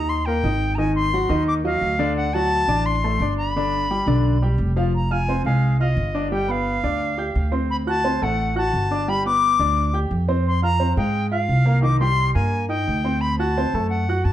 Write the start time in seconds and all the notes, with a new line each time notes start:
Already playing: D#2 D#4 D#5 A#5 D#6
0.09 C6
0.25 A#3 A#4 G5 A#5
0.44 G#1 D#4 D#5 D#6
0.75 D#3 D#4 D#5 G#5 A#5
0.96 C6
1.14 F#3 F#4 F#5
1.29 D#2 D#3 D#4 D#5
1.48 D6
1.64 F#3 F#4 D#5 F5
1.81 D2
1.99 D3 D4 D5
2.16 F#5
2.33 F#3 F#4 F#5 A5
2.68 A1 D4 D5 D6
2.86 C6
3.04 A3 A4 A5
3.19 G1 D4 D5 D6
3.38 B5
3.56 D3 D4 D5
3.90 G3 G4 G5
4.07 B1 D3 D4 D5
4.42 G3 G4 G5
4.58 F1
4.76 F3 F4 F5
4.95 A#5
5.11 F4 F5 G#5 F6
5.28 C4 C5 C6
5.44 C2 G#3 G#4 F5 G#5
5.80 F4 D#5 F5 F6
5.97 G1
6.15 D4 D5 D6
6.31 G3 G4 G5
6.48 B3 B4 F5 B5
6.83 D2 D4 D5 D6
7.18 G4 G5 G6
7.35 D2
7.52 C4 C5 C6
7.70 B5
7.87 F#4 F#5 A5 F#6
8.04 C4 C5 C6
8.22 A1 A3 A4 F#5 A5
8.56 F#4 F#5 A5 F#6
8.73 G1
8.91 D4 D5 D6
9.08 G3 G4 G5 B5
9.25 B3 B4 B5 D6
9.59 D2 D4 D5 D6
9.94 G4 G5 G6
10.11 F2
10.29 C4 C5 C6
10.47 C6
10.62 F4 F5 A#5 F6
10.80 C4 C5 C6
10.97 G#2 G#3 G#4 F5 G5
11.31 F4 F5 F6
11.49 C2
11.65 A#3 A#4 A#5
11.82 D#3 D#4 D#5 D6
12.00 G3 G4 G5 C6
12.35 G2 A#3 A#4 G#5 A#5
12.69 D#4 D#5 G5 D#6
12.87 D2
13.04 C4 C5 C6
13.21 B5
13.39 F#4 F#5 A5 F#6
13.58 C4 C5 C6
13.73 F#2 A3 A4 A5
13.90 F#5
14.09 F#4 F#5 F#6
14.24 G2 A5